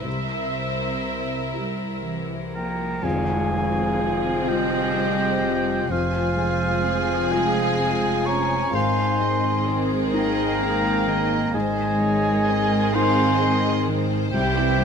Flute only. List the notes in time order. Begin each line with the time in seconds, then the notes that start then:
2.55 G5
3.04 F5
4.47 D#5
5.90 C5
7.32 F5
8.27 A#5
8.74 G#5
10.17 G5
11.54 D#5
12.95 G#5
14.34 E5